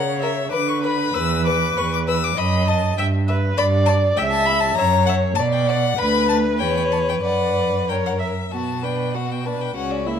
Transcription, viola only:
0.00 0.52 C#5 medium
0.53 2.33 B4 medium
2.37 2.96 D#5 medium
2.98 3.06 E5 medium
3.28 3.59 B4 medium
3.58 4.20 D5 medium
4.18 4.77 E5 medium
4.78 5.37 C#5 medium
5.38 5.98 D5 medium
5.98 6.61 B4 medium
6.60 7.23 C#5 medium
7.23 7.80 D5 medium
7.88 8.18 C#5 medium
8.19 8.27 E5 medium
8.52 8.85 B3 soft
8.83 9.17 D4 soft
9.16 9.48 B3 soft
9.47 9.76 D4 soft
9.77 10.08 C#4 soft
10.07 10.20 A#3 soft

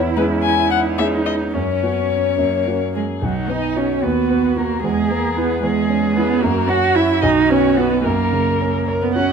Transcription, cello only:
0.00 1.50 E4 medium
1.54 2.78 C#4 medium
2.95 3.03 G#3 soft
3.23 3.51 F#3 soft
3.50 3.79 D#4 medium
3.78 4.05 C#4 medium
4.04 4.59 B3 medium
4.57 4.83 A#3 medium
4.84 5.12 G#3 medium
5.10 5.36 A#3 medium
5.37 5.63 B3 medium
5.63 6.18 G#3 medium
6.16 6.43 B3 medium
6.42 6.70 A#3 medium
6.69 6.97 F#4 medium
6.95 7.24 E4 medium
7.22 7.51 D#4 medium
7.50 7.79 C#4 medium
7.77 8.04 B3 medium
8.05 8.86 A#3 medium
9.02 9.18 B3 medium
9.16 9.32 C#4 medium

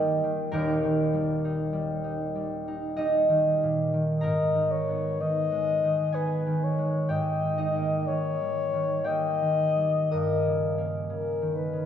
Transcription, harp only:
0.00 0.58 G1 medium
0.00 0.58 G2 medium
0.00 0.23 D#3 medium
0.00 1.12 G3 soft
0.00 3.29 A#3 soft
0.00 0.52 D#4 medium
0.00 0.52 G4 medium
0.00 0.50 A#4 medium
0.00 2.95 D#5 medium
0.00 2.26 G5 loud
0.00 1.27 A#5 loud
0.24 0.58 D#3 soft
0.52 4.23 D#1 medium
0.52 4.24 D#2 medium
0.52 1.43 D#4 medium
0.52 4.23 G4 medium
0.52 4.21 A#4 medium
0.84 3.28 D#3 soft
1.13 1.72 G3 soft
1.45 2.03 D#4 soft
1.73 2.34 G3 medium
2.04 2.66 D#4 soft
2.35 2.97 G3 soft
2.68 2.97 D#4 soft
2.96 4.24 G3 soft
2.96 6.88 D#4 medium
2.96 6.87 D#5 medium
3.29 3.92 D#3 soft
3.63 4.25 A#2 soft
3.93 4.25 D#3 soft
4.21 7.08 G#2 soft
4.21 8.13 A#4 medium
4.21 7.50 A#5 medium
4.55 5.19 D#3 soft
4.89 6.13 B3 soft
5.20 5.82 D#3 soft
5.52 6.77 G#3 soft
5.83 6.45 D#3 soft
6.12 7.14 B3 soft
6.12 7.14 G#4 soft
6.12 7.13 G#5 medium
6.46 7.14 D#3 soft
6.78 7.14 G#3 soft
7.09 10.16 G#2 soft
7.09 9.04 G4 medium
7.09 9.03 G5 medium
7.43 8.06 D#3 soft
7.58 11.49 D#4 medium
7.58 10.11 D#5 medium
7.76 9.04 A#3 soft
8.08 8.72 D#3 soft
8.41 9.75 G3 soft
8.73 9.41 D#3 soft
9.04 10.77 A#3 soft
9.04 11.86 G4 soft
9.04 11.86 G5 medium
9.42 10.17 D#3 soft
9.77 11.86 G3 soft
10.11 11.86 G2 soft
10.11 11.86 D#5 medium
10.11 11.86 D#6 medium
10.46 11.09 C#3 soft
10.78 11.86 A#3 soft
11.10 11.72 C#3 soft
11.42 11.86 D#3 soft
11.73 11.86 C#3 soft

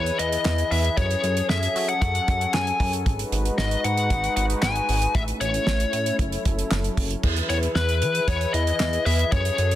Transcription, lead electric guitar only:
0.00 0.19 C#5 medium
0.19 0.71 D#5 loud
0.71 0.96 E5 medium
0.98 1.46 C#5 medium
1.50 1.86 E5 medium
1.89 2.01 F#5 loud
2.02 2.54 F#5 loud
2.54 2.90 G#5 loud
3.58 3.85 D#5 medium
3.84 4.33 F#5 loud
4.36 4.44 F#5 loud
4.63 5.16 G#5 loud
5.15 5.22 E5 loud
5.41 6.15 C#5 medium
7.49 7.57 C#5 medium
7.76 8.29 B4 medium
8.28 8.52 C#5 medium
8.54 9.06 D#5 loud
9.06 9.32 E5 loud
9.32 9.75 C#5 medium

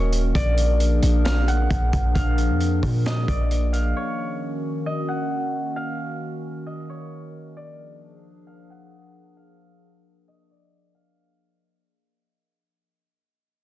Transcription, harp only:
0.00 0.41 C#5 medium
0.00 0.41 D#5 medium
0.00 0.21 F5 loud
0.35 2.20 D5 loud
1.25 1.54 F5 medium
1.48 2.21 F#5 medium
2.15 3.72 F5 medium
3.06 3.35 D#5 medium
3.29 4.03 D5 medium
3.73 5.14 F5 medium
3.97 5.88 C#5 medium
4.86 6.65 D#5 medium
5.08 5.82 F#5 medium
5.76 7.43 F5 medium
6.66 7.63 D#5 medium
6.90 7.63 C#5 medium
7.57 9.41 D5 loud
8.47 8.76 F5 medium
8.70 9.43 F#5 medium
9.37 10.94 F5 medium
10.28 10.57 D#5 medium
10.51 12.35 D5 medium
10.95 12.61 F5 medium

